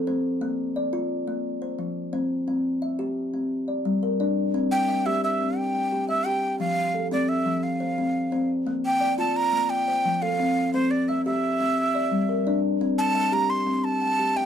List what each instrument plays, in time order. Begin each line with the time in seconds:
Already playing: kalimba A4
0.07 kalimba C4 C5
0.41 kalimba A#3
0.76 kalimba D5
0.93 kalimba F4
1.27 kalimba A#3
1.62 kalimba C5
1.79 kalimba F3
2.13 kalimba C4 C5
2.48 kalimba C4
2.82 kalimba E5
2.99 kalimba G4
3.34 kalimba C4
3.68 kalimba D5
3.85 kalimba G3
4.03 kalimba A#4
4.20 kalimba D4 D5
4.54 kalimba C4
4.71 flute G5
4.89 kalimba E5
5.06 kalimba G4, flute E5
5.24 flute E5
5.41 kalimba C4
5.57 flute G5
5.75 kalimba G5
5.92 kalimba G4
6.08 flute E5, kalimba E5
6.26 kalimba G4 G5, flute G5
6.59 kalimba F3, flute F5
6.95 kalimba A4
7.11 kalimba C4, flute D5
7.29 flute E5
7.46 kalimba F3
7.63 flute F5
7.80 kalimba C5
7.98 kalimba C4
8.32 kalimba C4 C5
8.67 kalimba A#3
8.85 flute G5
9.01 kalimba D5
9.18 kalimba F4, flute A5
9.36 flute A#5
9.53 kalimba A#3
9.70 flute G5
9.88 kalimba C5
10.05 kalimba F3
10.22 kalimba A4, flute F5
10.40 kalimba C4
10.73 kalimba C4, flute C5
10.91 flute D5
11.08 flute E5, kalimba E5
11.25 kalimba G4, flute E5
11.60 kalimba C4
11.95 kalimba D5
12.11 kalimba G3
12.29 kalimba A#4
12.47 kalimba D4 D5
12.81 kalimba C4
12.98 flute A5
13.15 kalimba E5
13.32 kalimba G4, flute A#5
13.50 flute C6
13.67 kalimba C4
13.84 flute A5
14.01 kalimba G5
14.19 kalimba G4
14.36 kalimba E5, flute G5